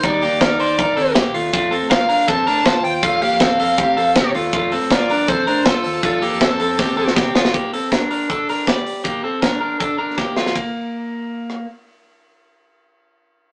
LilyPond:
<<
  \new Staff \with { instrumentName = "Lead electric guitar" } { \time 4/4 \key g \minor \tempo 4 = 160 d''2. r4 | r4 f''4 a''4. g''8 | f''8 f''2. r8 | r4 d''4 c''4 a'4 |
a'2. r4 | r1 | r1 | r1 |
r1 | }
  \new Staff \with { instrumentName = "Clean electric guitar" } { \time 4/4 \key g \minor <g ees'>8 <bes g'>8 <ees' bes'>8 <ees' c''>8 <ees' bes'>8 <c' a'>8 <bes g'>8 <a f'>8 | <a f'>8 <c' a'>8 <f' bes'>8 <d' bes'>8 <c' a'>8 <d' bes'>8 <f' c''>4 | <a f'>8 <bes g'>8 <c' a'>8 <c' a'>8 <c' g'>8 <c' a'>8 <c' g'>8 <a f'>8 | <a f'>8 <c' a'>8 <f' bes'>8 <d' bes'>8 <c' a'>8 <d' bes'>8 <f' c''>4 |
<a f'>8 <bes g'>8 <c' a'>8 <c' a'>8 <c' g'>8 <c' a'>8 <c' g'>8 <a f'>8 | <bes g'>8 <c' a'>8 <d' bes'>8 <d' bes'>8 <d' a'>8 <d' bes'>8 <g' d''>4 | <bes g'>8 <c' a'>8 <d' bes'>8 <d' bes'>8 <d' a'>8 <d' bes'>8 <bes g'>8 <a f'>8 | bes2. r4 |
r1 | }
  \new Staff \with { instrumentName = "Fingered electric bass" } { \clef bass \time 4/4 \key g \minor ees,8. ees,8. ees,8 g,8 ees,8 bes,8 ees,8 | f,8. a,8. g,8 f,8 a,8 r8 ees,8 | f,8. f,8. f,8 a,8 f,8 c8 ees,8 | f,8. a,8. g,8 f,8 a,8 g,8 ees,8 |
f,8. f,8. f,8 a,8 f,8 c8 f,,8 | r1 | r1 | r1 |
r1 | }
  \new DrumStaff \with { instrumentName = "Drums" } \drummode { \time 4/4 <hh bd>8 hho8 <hh bd sn>8 hho8 <hh bd>8 hho8 <hh bd sn>8 hho8 | <hh bd>8 hho8 <hh bd sn>8 hho8 <hh bd>8 hho8 <hh bd sn>8 hho8 | <hh bd>8 hho8 <hh bd sn>8 hho8 <hh bd>8 hho8 <hh bd sn>8 hho8 | <hh bd>8 hho8 <hh bd sn>8 hho8 <hh bd>8 hho8 <hh bd sn>8 hho8 |
<hh bd>8 hho8 <hh bd sn>8 hho8 <bd sn>8. sn16 <bd sn>8 sn16 sn16 | <hh bd>8 hho8 <hh bd sn>8 hho8 <hh bd>8 hho8 <hh bd sn>8 hho8 | <hh bd>4 <hh bd sn>4 <hh bd>4 <bd sn>8 sn16 sn16 | <bd cymr>4 r4 r8 ss8 r4 |
r4 r4 r4 r4 | }
>>